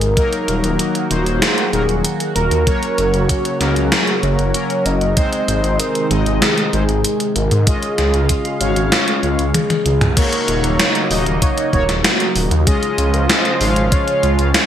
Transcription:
Already playing: analog synth pad C3 D#3 G#3 D#4, soft synth lead A#4
0.01 detuned saw bass G#1, closed hi-hat
0.17 analog synth pad D#3 F#3 A#3 F#4, analog polysynth F#3 A#3 D#4 A#4, kick, closed hi-hat
0.33 closed hi-hat
0.48 detuned saw bass D#1, closed hi-hat
0.64 detuned saw bass D#1, closed hi-hat
0.79 soft synth lead F#4, closed hi-hat
0.95 closed hi-hat
1.11 detuned saw bass D#1, analog polysynth F#3 A#3 D#4 C5, closed hi-hat
1.26 detuned saw bass D#1, closed hi-hat
1.42 soft synth lead G#4, snare, closed hi-hat
1.58 closed hi-hat
1.73 detuned saw bass D#1, analog polysynth F#3 A#3 D#4 A#4, soft synth lead G#4, closed hi-hat
1.89 detuned saw bass D#1, closed hi-hat
2.05 closed hi-hat
2.20 closed hi-hat
2.35 detuned saw bass D#1, soft synth lead A#4, closed hi-hat
2.51 detuned saw bass D#2, closed hi-hat
2.67 analog synth pad C#3 F#3, analog polysynth F#3 A#3 C#4 C#5, kick, closed hi-hat
2.83 closed hi-hat
2.98 detuned saw bass F#1, closed hi-hat
3.14 detuned saw bass F#1, closed hi-hat
3.29 soft synth lead F#4, kick, closed hi-hat
3.45 closed hi-hat
3.61 detuned saw bass C#2, analog polysynth F#3 A#3 C#4 A#4, snare, closed hi-hat
3.76 detuned saw bass C#2, closed hi-hat
3.92 soft synth lead G#4, snare, closed hi-hat
4.07 closed hi-hat
4.23 detuned saw bass F#1, soft synth lead C#5, closed hi-hat
4.39 detuned saw bass F#1, closed hi-hat
4.54 analog polysynth F#3 A#3 C#4 A#4, closed hi-hat
4.70 closed hi-hat
4.85 detuned saw bass F#1, soft synth lead D#5, closed hi-hat
5.01 detuned saw bass F#1, closed hi-hat
5.17 analog synth pad C3 D#3 G#3 D#4, analog polysynth G#3 C4 D#4 C5, kick, closed hi-hat
5.33 closed hi-hat
5.48 detuned saw bass G#1, closed hi-hat
5.64 detuned saw bass G#1, closed hi-hat
5.79 soft synth lead A#4, closed hi-hat
5.95 closed hi-hat
6.11 detuned saw bass G#1, analog polysynth G#3 C4 D#4 D#5, soft synth lead G#4, closed hi-hat
6.26 detuned saw bass G#1, closed hi-hat
6.42 snare, closed hi-hat
6.58 closed hi-hat
6.73 detuned saw bass G#1, analog polysynth G#3 C4 D#4 C5, soft synth lead G#4, closed hi-hat
6.89 detuned saw bass G#1, closed hi-hat
7.04 closed hi-hat
7.20 closed hi-hat
7.36 detuned saw bass G#1, soft synth lead A#4, closed hi-hat
7.51 detuned saw bass G#2, closed hi-hat
7.67 analog synth pad C#3 F5, analog polysynth G#3 C#4 F4 D#5, soft synth lead G#4, kick, closed hi-hat
7.83 closed hi-hat
7.98 detuned saw bass C#2, snare, closed hi-hat
8.14 detuned saw bass C#2, closed hi-hat
8.29 kick, closed hi-hat
8.45 closed hi-hat
8.61 detuned saw bass G#1, analog polysynth G#3 C#4 C#5 F5, soft synth lead F#4, closed hi-hat
8.76 detuned saw bass G#1, closed hi-hat
8.92 soft synth lead F4, snare, closed hi-hat
9.08 closed hi-hat
9.23 detuned saw bass C#2, closed hi-hat
9.39 detuned saw bass C#2, closed hi-hat
9.54 soft synth lead G#4, closed hi-hat, high tom
9.70 closed hi-hat, high tom
9.86 detuned saw bass C#2, closed hi-hat
10.01 detuned saw bass C#2, closed hi-hat, mid tom
10.17 analog synth pad C#3 F#3 A#3 D#4, analog polysynth A#3 D#4 F#4 C#5, soft synth lead A#4, kick, closed hi-hat, crash
10.33 closed hi-hat
10.48 detuned saw bass D#1, closed hi-hat
10.64 detuned saw bass D#1, soft synth lead C#5, closed hi-hat
10.79 snare, closed hi-hat
10.95 closed hi-hat
11.11 detuned saw bass D#1, analog polysynth A#3 D#4 F#4 D#5, soft synth lead D#5, open hi-hat
11.26 detuned saw bass D#1, closed hi-hat
11.42 soft synth lead C#5, kick, closed hi-hat
11.58 closed hi-hat
11.73 detuned saw bass D#1, analog polysynth A#3 D#4 F#4 C#5, soft synth lead C#5, kick, closed hi-hat
11.89 detuned saw bass D#1, snare, closed hi-hat
12.04 soft synth lead F#4, snare, closed hi-hat
12.20 closed hi-hat
12.36 detuned saw bass D#1, open hi-hat
12.51 detuned saw bass D#2, closed hi-hat
12.67 analog synth pad C#3 F3 G#3 F4, analog polysynth G#3 C#4 F4 D#5, soft synth lead G#4, kick, closed hi-hat
12.83 closed hi-hat
12.98 detuned saw bass C#2, closed hi-hat
13.14 detuned saw bass C#2, soft synth lead C5, closed hi-hat
13.29 snare, closed hi-hat
13.45 closed hi-hat
13.61 detuned saw bass G#1, analog polysynth G#3 C#4 F4 F5, open hi-hat
13.76 detuned saw bass G#1, closed hi-hat
13.92 soft synth lead C#5, kick, closed hi-hat
14.08 closed hi-hat
14.23 detuned saw bass C#2, closed hi-hat
14.39 detuned saw bass C#2, closed hi-hat
14.54 analog polysynth G#3 C#4 F4 C#5, soft synth lead G#4, snare, closed hi-hat

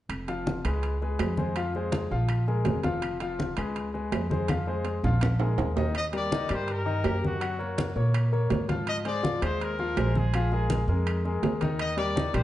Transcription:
0.09 upright bass F1, high conga, high timbale, claves
0.28 grand piano F3 F4 F5, high conga, high timbale
0.46 high conga, low timbale
0.65 upright bass C#2, grand piano G#3 G#4 B4, high timbale, claves
0.83 high conga, high timbale
1.02 grand piano G#3 G#4 B4, high conga
1.19 upright bass F2, high conga, high timbale, low timbale, claves
1.37 grand piano G#3 G#4 C5, high conga
1.56 grand piano F3 F4 F5, high conga, high timbale, claves
1.75 grand piano G#3 G#4 C5, high conga
1.92 high conga, high timbale, low timbale
2.11 upright bass A#1, grand piano F3 F4 F5, high conga
2.29 high conga, high timbale, claves
2.48 grand piano G#3 G#4 A#4, high conga
2.65 upright bass F1, high conga, high timbale, low timbale
2.83 grand piano F3 F4 F5, high conga, high timbale
3.02 high conga, high timbale, claves
3.20 grand piano F3 F4 F5, high conga, high timbale
3.39 high conga, low timbale
3.57 upright bass C#2, grand piano G#3 G#4 B4, high timbale, claves
3.76 high conga, high timbale
3.94 grand piano G#3 G#4 B4, high conga
4.12 upright bass F2, high conga, high timbale, low timbale, claves
4.30 grand piano G#3 G#4 C5, high conga
4.48 grand piano F3 F4 F5, high conga, high timbale, claves
4.67 grand piano G#3 G#4 C5
4.85 high timbale, low timbale
5.03 upright bass A#1, grand piano F3 F4 F5, low conga
5.21 low conga, high timbale, claves
5.40 grand piano G#3 G#4 A#4, high timbale
5.58 upright bass D#2, low conga, high timbale
5.76 grand piano D#3 D#4 D#5, low conga, low timbale
5.95 trumpet D#5, high conga, high timbale, claves
6.13 grand piano G3 G4 A#4, trumpet D5, high conga, high timbale
6.32 grand piano D#3 D#4 D#5, high conga, low timbale
6.49 upright bass G2, grand piano G3 G4 A#4, high timbale, claves
6.54 trumpet C5
6.68 trumpet A#4, high conga, high timbale
6.86 grand piano D#3 D#4 D#5, high conga
7.04 upright bass F#2, grand piano A#3 G4 A#4, high conga, high timbale, low timbale, claves
7.24 trumpet F#4, high conga
7.40 grand piano F#3 F#4 F#5, high conga, high timbale, claves
7.59 grand piano A#3 A#4 C#5, high conga
7.78 high conga, high timbale, low timbale
7.96 upright bass A#2, grand piano A#3 A#4 C#5, high conga
8.14 high conga, high timbale, claves
8.32 grand piano A#3 A#4 C#5, high conga
8.50 upright bass G#2, high conga, high timbale, low timbale
8.68 grand piano F3 F4 F5, high conga, high timbale
8.87 trumpet D#5, high conga, high timbale, claves
9.05 grand piano G#3 G#4 C5, trumpet D5, high conga, high timbale
9.23 grand piano F3 F4 F5, high conga, low timbale
9.42 upright bass D#2, grand piano G#3 G#4 C5, trumpet C5, high timbale, claves
9.61 trumpet A#4, high conga, high timbale
9.79 grand piano F3 F4 F5, high conga
9.97 upright bass A#1, grand piano G#3 G#4 C5, high conga, high timbale, low timbale, claves
10.15 trumpet G#4, high conga
10.34 grand piano F3 F4 F5, high conga, high timbale, claves
10.52 grand piano G#3 G#4 A#4, high conga
10.70 high conga, high timbale, low timbale
10.88 upright bass F2, grand piano G#3 G#4 A#4, high conga
11.07 high conga, high timbale, claves
11.25 grand piano G#3 G#4 A#4, high conga
11.43 upright bass D#2, high conga, high timbale, low timbale
11.61 grand piano D#3 D#4 D#5, high conga, high timbale
11.79 trumpet D#5, high conga, high timbale, claves
11.97 grand piano G3 G4 A#4, trumpet D5, high conga, high timbale
12.16 grand piano D#3 D#4 D#5, high conga, low timbale
12.34 upright bass A#1, grand piano G3 G4 A#4, trumpet C5, high timbale, claves

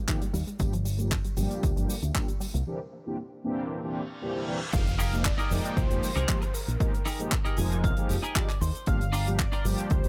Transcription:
0.08 synth arpeggio sound D#3, analog polysynth F3 G#3 A#3 D#4 G4, kick, clap, closed hi-hat, tambourine, shaker
0.21 synth arpeggio sound G3, closed hi-hat, tambourine, shaker
0.34 fingered electric bass D#2, synth arpeggio sound G3, open hi-hat, tambourine, shaker
0.46 synth arpeggio sound G#3, closed hi-hat, tambourine, shaker
0.59 fingered electric bass G1, synth arpeggio sound D3, analog polysynth F3 G3 A#3 D4 G4, kick, closed hi-hat, tambourine, shaker
0.72 synth arpeggio sound F3, closed hi-hat, tambourine, shaker
0.85 synth arpeggio sound G3, open hi-hat, tambourine, shaker
0.99 analog polysynth F3 G3 A#3 D4 G4, synth arpeggio sound A#3, closed hi-hat, tambourine, shaker
1.11 synth arpeggio sound D3, kick, clap, closed hi-hat, tambourine, shaker
1.25 synth arpeggio sound G3, closed hi-hat, tambourine, shaker
1.37 fingered electric bass G1, analog polysynth F3 G3 A#3 D4 G4, synth arpeggio sound G3, open hi-hat, tambourine, shaker
1.51 synth arpeggio sound A#3, closed hi-hat, tambourine, shaker
1.63 fingered electric bass D2, kick, closed hi-hat, tambourine, shaker
1.76 fingered electric bass G1, analog polysynth F3 G3 A#3 D4 G4, synth arpeggio sound F3, closed hi-hat, tambourine, shaker
1.89 synth arpeggio sound G3, open hi-hat, tambourine, shaker
2.02 fingered electric bass D2, synth arpeggio sound A#3, closed hi-hat, tambourine, shaker
2.14 synth arpeggio sound D3, analog polysynth F3 G3 A#3 D4 G4, kick, clap, closed hi-hat, tambourine, shaker
2.28 synth arpeggio sound G3, closed hi-hat, tambourine, shaker
2.40 synth arpeggio sound G3, open hi-hat, tambourine, shaker
2.54 fingered electric bass C2, synth arpeggio sound A#3, closed hi-hat, tambourine, shaker
2.66 analog polysynth E3 A#3 C4 D4 G4
3.06 analog polysynth E3 A#3 C4 D4 G4
3.44 analog polysynth E3 A#3 C4 D4 G4
3.70 reverse cymbal
3.83 analog polysynth E3 A#3 C4 D4 G4
4.21 analog polysynth E3 A#3 C4 D4 G4
4.35 analog polysynth E3 A#3 C4 D4 G4
4.47 analog polysynth E3 A#3 C4 D4 G4
4.73 fingered electric bass F1, analog polysynth F3 G#3 A#3 D#4 G4, analog synth lead F5, kick, closed hi-hat, crash, downlifter, shaker
4.87 closed hi-hat, shaker
4.99 clean electric guitar D#4 G4 G#4 A#4, open hi-hat, shaker
5.12 analog polysynth F3 G#3 A#3 D#4 G4, closed hi-hat, shaker
5.25 analog synth lead D5, muted clean electric guitar stroke, kick, clap, closed hi-hat, shaker
5.38 clean electric guitar D#4 G4 G#4 A#4, closed hi-hat, shaker
5.50 fingered electric bass F1, analog polysynth F3 G#3 A#3 D#4 G5, open hi-hat, shaker
5.64 muted clean electric guitar stroke, closed hi-hat, shaker
5.76 fingered electric bass C2, analog synth lead C5, kick, closed hi-hat, shaker
5.90 fingered electric bass F1, analog polysynth F3 G#3 A#3 D#4 G4, closed hi-hat, shaker
6.02 analog synth lead C5, open hi-hat, shaker
6.16 fingered electric bass C2, clean electric guitar D#4 G4 G#4 A#4, closed hi-hat, shaker
6.28 analog polysynth F3 G#3 A#3 D#4 G4, kick, clap, closed hi-hat, shaker
6.42 muted clean electric guitar stroke, closed hi-hat, shaker
6.54 analog synth lead A#4, muted clean electric guitar stroke, open hi-hat, shaker
6.68 fingered electric bass A#1, closed hi-hat, shaker
6.80 analog polysynth F3 G#3 A#3 D#4 G4, kick, closed hi-hat, shaker
6.94 closed hi-hat, shaker
7.05 clean electric guitar D#4 G4 G#4 A#4, open hi-hat, shaker
7.19 analog polysynth F3 G#3 A#3 D#4 G4, closed hi-hat, shaker
7.32 muted clean electric guitar stroke, kick, clap, closed hi-hat, shaker
7.45 clean electric guitar D#4 G4 G#4 A#4, closed hi-hat, shaker
7.57 fingered electric bass F1, analog polysynth F3 G#3 A#3 D#4, clean electric guitar G#5, open hi-hat, shaker
7.71 muted clean electric guitar stroke, closed hi-hat, shaker
7.84 fingered electric bass C2, clean electric guitar F5, kick, closed hi-hat, shaker
7.97 analog polysynth F3 G#3 A#3 D#4 G4, closed hi-hat, shaker
8.09 fingered electric bass F1, open hi-hat, shaker
8.22 clean electric guitar D#4 G4 G#4 A#4 D#5, closed hi-hat, shaker
8.35 analog polysynth F3 G#3 A#3 D#4 G4, clean electric guitar D5, kick, clap, closed hi-hat, shaker
8.48 muted clean electric guitar stroke, clap, closed hi-hat, shaker
8.61 fingered electric bass D#2, clean electric guitar C5, muted clean electric guitar stroke, open hi-hat, shaker
8.75 closed hi-hat, shaker
8.86 fingered electric bass G1, analog polysynth F3 G3 A#3 D4 G4, analog synth lead F5, kick, closed hi-hat, shaker
9.01 closed hi-hat, shaker
9.12 clean electric guitar D4 F4 G4 A#4, open hi-hat, shaker
9.26 analog polysynth F3 G3 A#3 D4 G4, closed hi-hat, shaker
9.39 analog synth lead D5, kick, clap, closed hi-hat, shaker
9.52 clean electric guitar D4 F4 G4 A#4, closed hi-hat, shaker
9.64 fingered electric bass G1, analog polysynth F3 G3 A#3 D4 G4, open hi-hat, shaker
9.78 muted clean electric guitar stroke, closed hi-hat, shaker
9.90 fingered electric bass D2, analog synth lead C5, kick, closed hi-hat, shaker
10.04 fingered electric bass G1, analog polysynth F3 G3 A#3 D4 G4, closed hi-hat, shaker

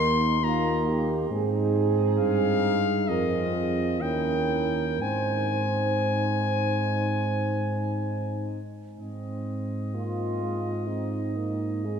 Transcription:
Already playing: tuba D#2, trombone A#3, trombone section D#4, french horn section A#4, cornet C6
0.42 trombone A#3, trombone section D#4, french horn section F4, cornet A#5
0.87 french horn section G4
1.29 tuba G#2, trombone C4, trombone section D#4, french horn section G#4
2.18 tuba G2, cornet F5
3.08 tuba F2, trombone C4, trombone section F4, french horn section A#4, cornet D#5
3.54 french horn section G#4
4.00 tuba D#2, trombone C#4, trombone section E4, french horn section A#4, cornet G5
4.99 tuba G#2, trombone C4, trombone section D#4, french horn section C5, cornet G#5
8.98 tuba G#2, trombone section C4, trombone C4, cornet D#5
9.95 trombone A#3, french horn section F4
10.41 trombone G#3
10.86 trombone C4, french horn section D#4
11.37 trombone A#3
11.84 trombone G#3, french horn section G#4

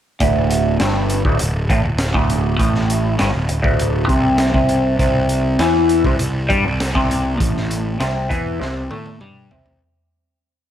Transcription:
0.20 picked electric bass D1, clean electric guitar D2, kick, closed hi-hat
0.51 closed hi-hat
0.80 picked electric bass G1, clean electric guitar G2, snare, closed hi-hat
1.10 closed hi-hat
1.25 picked electric bass D1, clean electric guitar D2, kick
1.39 picked electric bass D1, clean electric guitar D2, closed hi-hat
1.70 picked electric bass A1, clean electric guitar A2, kick, closed hi-hat
1.85 picked electric bass D1, clean electric guitar D2
1.98 snare, closed hi-hat
2.14 picked electric bass D1, clean electric guitar D2, kick
2.30 closed hi-hat
2.59 picked electric bass A1, clean electric guitar A2, kick, closed hi-hat
2.75 snare
2.90 closed hi-hat
3.19 picked electric bass G1, clean electric guitar G2, snare, closed hi-hat
3.34 picked electric bass D1, clean electric guitar D2
3.49 picked electric bass D1, clean electric guitar D2, closed hi-hat
3.62 picked electric bass D1, clean electric guitar D2, kick
3.79 closed hi-hat
4.08 picked electric bass C2, clean electric guitar C3, kick, closed hi-hat
4.38 snare, closed hi-hat
4.54 picked electric bass C2, clean electric guitar C3, kick
4.69 closed hi-hat
4.99 picked electric bass C2, clean electric guitar C3, kick, closed hi-hat
5.29 closed hi-hat
5.59 picked electric bass E2, clean electric guitar E3, snare, closed hi-hat
5.89 closed hi-hat
6.04 picked electric bass C2, clean electric guitar C3, kick
6.19 picked electric bass C2, clean electric guitar C3, closed hi-hat
6.49 picked electric bass G2, clean electric guitar G3, kick, closed hi-hat
6.65 picked electric bass C2, clean electric guitar C3
6.80 snare, closed hi-hat
6.95 picked electric bass C2, clean electric guitar C3, kick
7.11 closed hi-hat
7.38 picked electric bass A1, clean electric guitar A2, kick, closed hi-hat
7.57 snare
7.71 closed hi-hat
8.00 picked electric bass C2, clean electric guitar C3, snare, closed hi-hat
8.29 picked electric bass E2, clean electric guitar E3, kick, closed hi-hat
8.60 picked electric bass C2, clean electric guitar C3, snare
8.91 picked electric bass A2, clean electric guitar A3, high tom
9.06 high tom
9.21 picked electric bass G2, clean electric guitar G3, mid tom
9.51 picked electric bass C2, clean electric guitar C3, floor tom
9.66 floor tom

